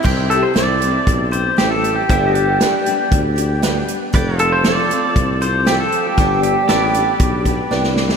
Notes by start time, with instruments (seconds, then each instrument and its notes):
0.03 tuba C2, steel-string acoustic guitar C3 G3 C4 E4 G4, pedal steel guitar C5 E5 G5, kick, crash
0.30 pedal steel guitar A4, closed hi-hat
0.43 pedal steel guitar C5
0.54 tuba C2, steel-string acoustic guitar G3 C4 E4 G4, upright piano E4 G4 C5, pedal steel guitar D5, snare, closed hi-hat
0.81 steel-string acoustic guitar C4 E4 G4, closed hi-hat
1.07 tuba B1, kick, closed hi-hat
1.31 steel-string acoustic guitar C4 E4 G4, pedal steel guitar C5, closed hi-hat
1.57 tuba A1, steel-string acoustic guitar G3 C4 E4 G4, upright piano E4 G4 C5, pedal steel guitar G4, snare, closed hi-hat
1.71 pedal steel guitar A4
1.84 closed hi-hat
1.96 pedal steel guitar G4
2.09 tuba G1, steel-string acoustic guitar G2 D3 G3 B3 D4 G4, pedal steel guitar C5 E5 G5, kick, closed hi-hat
2.30 pedal steel guitar B4
2.35 pedal steel guitar G4 D5, closed hi-hat
2.60 steel-string acoustic guitar G3 B3 D4 G4, upright piano D4 G4 B4, snare, closed hi-hat
2.85 steel-string acoustic guitar G3 B3 D4 G4, closed hi-hat
3.11 tuba D2, kick, closed hi-hat
3.36 steel-string acoustic guitar G3 B3 D4 G4, closed hi-hat
3.62 steel-string acoustic guitar G3 B3 D4 G4, upright piano D4 G4 B4, snare, closed hi-hat
3.88 closed hi-hat
4.13 tuba F1, steel-string acoustic guitar F3 C4 F4 A4, pedal steel guitar B4 D5 G5, kick, closed hi-hat
4.39 pedal steel guitar A4 C5 F5, closed hi-hat
4.52 pedal steel guitar C5
4.64 steel-string acoustic guitar F3 C4 F4 A4, upright piano F4 A4 C5, pedal steel guitar D5, snare, closed hi-hat
4.90 steel-string acoustic guitar C4 F4 A4, closed hi-hat
5.16 tuba C2, kick, closed hi-hat
5.41 steel-string acoustic guitar C4 F4 A4, pedal steel guitar C5, closed hi-hat
5.65 steel-string acoustic guitar F3 C4 F4 A4, upright piano F4 A4 C5, pedal steel guitar G4, snare, closed hi-hat
5.80 pedal steel guitar A4
5.92 closed hi-hat
6.07 pedal steel guitar G4
6.17 tuba G1, steel-string acoustic guitar G2 D3 G3 B3 D4 G4, kick, closed hi-hat
6.43 pedal steel guitar G4, closed hi-hat
6.68 tuba A1, steel-string acoustic guitar G3 B3 D4 G4, upright piano G4 B4 D5, pedal steel guitar A4 B4 D5, snare, closed hi-hat
6.94 steel-string acoustic guitar G3 B3 D4 G4, pedal steel guitar G4, closed hi-hat
7.19 tuba B1, kick, closed hi-hat
7.45 steel-string acoustic guitar G3 B3 D4 G4, kick, closed hi-hat
7.71 tuba C2, steel-string acoustic guitar G3 B3 D4 G4, upright piano G4 B4 D5, snare
7.84 snare
7.96 snare
8.09 snare